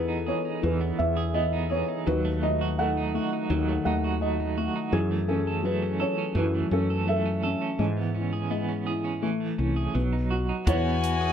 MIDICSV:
0, 0, Header, 1, 7, 480
1, 0, Start_track
1, 0, Key_signature, 4, "major"
1, 0, Tempo, 717703
1, 1380, Time_signature, 4, 2, 24, 8
1, 7575, End_track
2, 0, Start_track
2, 0, Title_t, "Violin"
2, 0, Program_c, 0, 40
2, 7137, Note_on_c, 0, 66, 103
2, 7575, Note_off_c, 0, 66, 0
2, 7575, End_track
3, 0, Start_track
3, 0, Title_t, "Felt piano"
3, 0, Program_c, 1, 0
3, 0, Control_c, 1, 64, 127
3, 0, Note_on_c, 1, 52, 38
3, 0, Note_on_c, 1, 59, 41
3, 0, Note_on_c, 1, 63, 41
3, 0, Note_on_c, 1, 68, 64
3, 0, Note_on_c, 1, 69, 52
3, 0, Note_on_c, 1, 71, 61
3, 166, Note_off_c, 1, 59, 0
3, 176, Note_on_c, 1, 59, 35
3, 188, Note_off_c, 1, 71, 0
3, 188, Note_on_c, 1, 73, 63
3, 401, Note_off_c, 1, 63, 0
3, 402, Note_off_c, 1, 52, 0
3, 412, Note_on_c, 1, 52, 45
3, 428, Note_on_c, 1, 71, 60
3, 431, Note_off_c, 1, 73, 0
3, 438, Note_off_c, 1, 68, 0
3, 438, Note_on_c, 1, 68, 45
3, 645, Note_off_c, 1, 59, 0
3, 655, Note_on_c, 1, 59, 42
3, 659, Note_on_c, 1, 76, 66
3, 671, Note_off_c, 1, 71, 0
3, 891, Note_off_c, 1, 52, 0
3, 899, Note_on_c, 1, 75, 69
3, 901, Note_on_c, 1, 52, 38
3, 907, Note_off_c, 1, 76, 0
3, 1123, Note_off_c, 1, 75, 0
3, 1128, Note_off_c, 1, 59, 0
3, 1138, Note_on_c, 1, 59, 38
3, 1144, Note_on_c, 1, 73, 67
3, 1363, Note_off_c, 1, 68, 0
3, 1366, Note_off_c, 1, 52, 0
3, 1372, Note_off_c, 1, 59, 0
3, 1382, Note_on_c, 1, 51, 51
3, 1382, Note_on_c, 1, 71, 79
3, 1388, Control_c, 1, 64, 0
3, 1389, Note_off_c, 1, 73, 0
3, 1390, Note_off_c, 1, 69, 0
3, 1399, Note_on_c, 1, 66, 51
3, 1520, Control_c, 1, 64, 127
3, 1619, Note_on_c, 1, 57, 43
3, 1624, Note_on_c, 1, 75, 67
3, 1628, Note_off_c, 1, 71, 0
3, 1845, Note_off_c, 1, 75, 0
3, 1860, Note_on_c, 1, 63, 46
3, 1864, Note_on_c, 1, 78, 72
3, 1876, Note_on_c, 1, 69, 50
3, 2091, Note_off_c, 1, 57, 0
3, 2101, Note_on_c, 1, 57, 42
3, 2322, Note_off_c, 1, 66, 0
3, 2331, Note_off_c, 1, 51, 0
3, 2341, Note_on_c, 1, 51, 52
3, 2566, Note_off_c, 1, 57, 0
3, 2566, Note_off_c, 1, 78, 0
3, 2576, Note_on_c, 1, 57, 46
3, 2576, Note_on_c, 1, 78, 58
3, 2790, Note_off_c, 1, 63, 0
3, 2798, Note_off_c, 1, 78, 0
3, 2816, Note_on_c, 1, 75, 54
3, 2817, Note_on_c, 1, 63, 36
3, 3036, Note_off_c, 1, 69, 0
3, 3050, Note_off_c, 1, 57, 0
3, 3060, Note_on_c, 1, 57, 41
3, 3267, Note_off_c, 1, 75, 0
3, 3268, Note_off_c, 1, 51, 0
3, 3280, Note_off_c, 1, 63, 0
3, 3289, Note_off_c, 1, 57, 0
3, 3292, Note_on_c, 1, 54, 53
3, 3295, Note_on_c, 1, 68, 73
3, 3301, Control_c, 1, 64, 0
3, 3310, Note_on_c, 1, 64, 51
3, 3414, Control_c, 1, 64, 127
3, 3517, Note_off_c, 1, 68, 0
3, 3531, Note_on_c, 1, 61, 45
3, 3535, Note_on_c, 1, 69, 64
3, 3753, Note_off_c, 1, 54, 0
3, 3763, Note_on_c, 1, 54, 46
3, 3779, Note_on_c, 1, 71, 71
3, 3781, Note_off_c, 1, 69, 0
3, 3998, Note_off_c, 1, 61, 0
3, 3998, Note_off_c, 1, 71, 0
3, 4008, Note_on_c, 1, 61, 42
3, 4020, Note_on_c, 1, 73, 64
3, 4233, Note_off_c, 1, 64, 0
3, 4244, Note_off_c, 1, 54, 0
3, 4254, Note_on_c, 1, 54, 47
3, 4260, Note_on_c, 1, 71, 65
3, 4263, Note_off_c, 1, 73, 0
3, 4274, Note_on_c, 1, 64, 55
3, 4478, Note_off_c, 1, 61, 0
3, 4488, Note_on_c, 1, 61, 45
3, 4501, Note_on_c, 1, 69, 71
3, 4503, Note_off_c, 1, 71, 0
3, 4714, Note_off_c, 1, 54, 0
3, 4724, Note_on_c, 1, 54, 37
3, 4738, Note_off_c, 1, 69, 0
3, 4740, Note_on_c, 1, 76, 65
3, 4748, Note_on_c, 1, 69, 54
3, 4961, Note_off_c, 1, 61, 0
3, 4971, Note_on_c, 1, 61, 44
3, 5192, Note_off_c, 1, 54, 0
3, 5192, Note_off_c, 1, 69, 0
3, 5195, Note_off_c, 1, 64, 0
3, 5204, Note_off_c, 1, 61, 0
3, 5211, Note_on_c, 1, 56, 52
3, 5219, Control_c, 1, 64, 0
3, 5338, Control_c, 1, 64, 127
3, 5457, Note_on_c, 1, 64, 37
3, 5677, Note_off_c, 1, 56, 0
3, 5687, Note_on_c, 1, 56, 44
3, 5925, Note_off_c, 1, 64, 0
3, 5935, Note_on_c, 1, 64, 39
3, 6154, Note_off_c, 1, 56, 0
3, 6166, Note_off_c, 1, 64, 0
3, 6169, Note_on_c, 1, 57, 52
3, 6178, Control_c, 1, 64, 0
3, 6303, Control_c, 1, 64, 127
3, 6411, Note_on_c, 1, 64, 39
3, 6630, Note_off_c, 1, 76, 0
3, 6638, Note_off_c, 1, 57, 0
3, 6645, Note_off_c, 1, 64, 0
3, 6650, Note_on_c, 1, 59, 43
3, 6662, Control_c, 1, 64, 0
3, 6790, Control_c, 1, 64, 127
3, 6898, Note_on_c, 1, 66, 40
3, 7120, Note_off_c, 1, 59, 0
3, 7130, Note_off_c, 1, 66, 0
3, 7138, Note_on_c, 1, 52, 55
3, 7145, Control_c, 1, 64, 0
3, 7146, Note_on_c, 1, 73, 77
3, 7160, Note_on_c, 1, 64, 66
3, 7259, Control_c, 1, 64, 127
3, 7575, Note_off_c, 1, 52, 0
3, 7575, Note_off_c, 1, 64, 0
3, 7575, Note_off_c, 1, 73, 0
3, 7575, End_track
4, 0, Start_track
4, 0, Title_t, "Clean electric guitar"
4, 0, Program_c, 2, 27
4, 0, Note_on_c, 2, 52, 64
4, 0, Note_on_c, 2, 59, 51
4, 0, Note_on_c, 2, 68, 45
4, 56, Note_on_c, 2, 63, 43
4, 169, Note_off_c, 2, 68, 0
4, 177, Note_on_c, 2, 68, 47
4, 299, Note_off_c, 2, 63, 0
4, 301, Note_on_c, 2, 63, 43
4, 414, Note_off_c, 2, 52, 0
4, 422, Note_on_c, 2, 52, 61
4, 532, Note_off_c, 2, 59, 0
4, 540, Note_on_c, 2, 59, 42
4, 661, Note_off_c, 2, 63, 0
4, 772, Note_off_c, 2, 68, 0
4, 780, Note_on_c, 2, 68, 48
4, 891, Note_off_c, 2, 59, 0
4, 899, Note_on_c, 2, 59, 48
4, 1022, Note_on_c, 2, 63, 46
4, 1128, Note_off_c, 2, 68, 0
4, 1136, Note_on_c, 2, 68, 51
4, 1252, Note_off_c, 2, 63, 0
4, 1260, Note_on_c, 2, 63, 42
4, 1380, Note_off_c, 2, 52, 0
4, 1382, Note_on_c, 2, 54, 62
4, 1426, Note_off_c, 2, 68, 0
4, 1427, Note_off_c, 2, 59, 0
4, 1428, Note_off_c, 2, 63, 0
4, 1503, Note_on_c, 2, 57, 48
4, 1625, Note_on_c, 2, 63, 43
4, 1746, Note_on_c, 2, 66, 50
4, 1865, Note_off_c, 2, 57, 0
4, 1868, Note_on_c, 2, 57, 57
4, 1980, Note_off_c, 2, 63, 0
4, 1988, Note_on_c, 2, 63, 48
4, 2106, Note_off_c, 2, 66, 0
4, 2108, Note_on_c, 2, 66, 52
4, 2219, Note_off_c, 2, 63, 0
4, 2227, Note_on_c, 2, 63, 41
4, 2342, Note_off_c, 2, 54, 0
4, 2345, Note_on_c, 2, 54, 64
4, 2457, Note_off_c, 2, 57, 0
4, 2465, Note_on_c, 2, 57, 42
4, 2577, Note_off_c, 2, 63, 0
4, 2585, Note_on_c, 2, 63, 50
4, 2696, Note_off_c, 2, 66, 0
4, 2704, Note_on_c, 2, 66, 50
4, 2815, Note_off_c, 2, 57, 0
4, 2823, Note_on_c, 2, 57, 52
4, 2934, Note_off_c, 2, 63, 0
4, 2942, Note_on_c, 2, 63, 43
4, 3053, Note_off_c, 2, 66, 0
4, 3061, Note_on_c, 2, 66, 52
4, 3173, Note_off_c, 2, 63, 0
4, 3181, Note_on_c, 2, 63, 49
4, 3296, Note_off_c, 2, 54, 0
4, 3299, Note_on_c, 2, 52, 65
4, 3345, Note_off_c, 2, 57, 0
4, 3345, Note_off_c, 2, 63, 0
4, 3345, Note_off_c, 2, 66, 0
4, 3418, Note_on_c, 2, 57, 49
4, 3538, Note_on_c, 2, 61, 47
4, 3659, Note_on_c, 2, 69, 49
4, 3775, Note_off_c, 2, 57, 0
4, 3782, Note_on_c, 2, 57, 61
4, 3887, Note_off_c, 2, 61, 0
4, 3895, Note_on_c, 2, 61, 45
4, 4004, Note_off_c, 2, 69, 0
4, 4012, Note_on_c, 2, 69, 55
4, 4126, Note_off_c, 2, 61, 0
4, 4134, Note_on_c, 2, 61, 43
4, 4248, Note_off_c, 2, 52, 0
4, 4256, Note_on_c, 2, 52, 67
4, 4370, Note_off_c, 2, 57, 0
4, 4378, Note_on_c, 2, 57, 39
4, 4485, Note_off_c, 2, 61, 0
4, 4493, Note_on_c, 2, 61, 48
4, 4607, Note_off_c, 2, 69, 0
4, 4615, Note_on_c, 2, 69, 50
4, 4726, Note_off_c, 2, 57, 0
4, 4734, Note_on_c, 2, 57, 57
4, 4844, Note_off_c, 2, 61, 0
4, 4852, Note_on_c, 2, 61, 41
4, 4964, Note_off_c, 2, 69, 0
4, 4972, Note_on_c, 2, 69, 53
4, 5085, Note_off_c, 2, 61, 0
4, 5093, Note_on_c, 2, 61, 44
4, 5203, Note_off_c, 2, 52, 0
4, 5211, Note_on_c, 2, 52, 62
4, 5259, Note_off_c, 2, 69, 0
4, 5260, Note_off_c, 2, 57, 0
4, 5260, Note_off_c, 2, 61, 0
4, 5331, Note_on_c, 2, 59, 44
4, 5448, Note_on_c, 2, 61, 43
4, 5569, Note_on_c, 2, 68, 53
4, 5682, Note_off_c, 2, 59, 0
4, 5690, Note_on_c, 2, 59, 57
4, 5801, Note_off_c, 2, 61, 0
4, 5809, Note_on_c, 2, 61, 42
4, 5921, Note_off_c, 2, 68, 0
4, 5929, Note_on_c, 2, 68, 51
4, 6040, Note_off_c, 2, 61, 0
4, 6048, Note_on_c, 2, 61, 41
4, 6163, Note_off_c, 2, 52, 0
4, 6171, Note_on_c, 2, 52, 64
4, 6217, Note_off_c, 2, 61, 0
4, 6218, Note_off_c, 2, 59, 0
4, 6218, Note_off_c, 2, 68, 0
4, 6289, Note_on_c, 2, 57, 39
4, 6409, Note_on_c, 2, 61, 41
4, 6530, Note_on_c, 2, 68, 47
4, 6649, Note_off_c, 2, 52, 0
4, 6652, Note_on_c, 2, 54, 60
4, 6700, Note_off_c, 2, 57, 0
4, 6700, Note_off_c, 2, 61, 0
4, 6700, Note_off_c, 2, 68, 0
4, 6773, Note_on_c, 2, 63, 40
4, 6892, Note_on_c, 2, 66, 52
4, 7007, Note_off_c, 2, 63, 0
4, 7015, Note_on_c, 2, 63, 42
4, 7134, Note_on_c, 2, 59, 78
4, 7182, Note_off_c, 2, 66, 0
4, 7183, Note_off_c, 2, 54, 0
4, 7183, Note_off_c, 2, 63, 0
4, 7251, Note_off_c, 2, 59, 0
4, 7253, Note_on_c, 2, 59, 52
4, 7495, Note_on_c, 2, 68, 53
4, 7575, Note_off_c, 2, 59, 0
4, 7575, Note_off_c, 2, 68, 0
4, 7575, End_track
5, 0, Start_track
5, 0, Title_t, "String section"
5, 0, Program_c, 3, 48
5, 7135, Note_on_c, 3, 59, 58
5, 7140, Note_on_c, 3, 52, 64
5, 7141, Note_on_c, 3, 80, 68
5, 7575, Note_off_c, 3, 52, 0
5, 7575, Note_off_c, 3, 59, 0
5, 7575, Note_off_c, 3, 80, 0
5, 7575, End_track
6, 0, Start_track
6, 0, Title_t, "Fretless electric bass"
6, 0, Program_c, 4, 35
6, 0, Note_on_c, 4, 40, 69
6, 203, Note_off_c, 4, 40, 0
6, 424, Note_on_c, 4, 40, 71
6, 607, Note_off_c, 4, 40, 0
6, 664, Note_on_c, 4, 40, 64
6, 1217, Note_off_c, 4, 40, 0
6, 1385, Note_on_c, 4, 39, 73
6, 2121, Note_off_c, 4, 39, 0
6, 2339, Note_on_c, 4, 39, 76
6, 2523, Note_off_c, 4, 39, 0
6, 2579, Note_on_c, 4, 39, 66
6, 3130, Note_off_c, 4, 39, 0
6, 3294, Note_on_c, 4, 42, 72
6, 4031, Note_off_c, 4, 42, 0
6, 4246, Note_on_c, 4, 42, 82
6, 4433, Note_off_c, 4, 42, 0
6, 4489, Note_on_c, 4, 42, 68
6, 5044, Note_off_c, 4, 42, 0
6, 5209, Note_on_c, 4, 44, 63
6, 6172, Note_off_c, 4, 44, 0
6, 6172, Note_on_c, 4, 45, 72
6, 6357, Note_off_c, 4, 45, 0
6, 6412, Note_on_c, 4, 36, 59
6, 6598, Note_off_c, 4, 36, 0
6, 6654, Note_on_c, 4, 35, 71
6, 7025, Note_off_c, 4, 35, 0
6, 7137, Note_on_c, 4, 40, 83
6, 7575, Note_off_c, 4, 40, 0
6, 7575, End_track
7, 0, Start_track
7, 0, Title_t, "Drums"
7, 7136, Note_on_c, 9, 36, 83
7, 7136, Note_on_c, 9, 42, 58
7, 7202, Note_off_c, 9, 42, 0
7, 7203, Note_off_c, 9, 36, 0
7, 7379, Note_on_c, 9, 42, 43
7, 7446, Note_off_c, 9, 42, 0
7, 7575, End_track
0, 0, End_of_file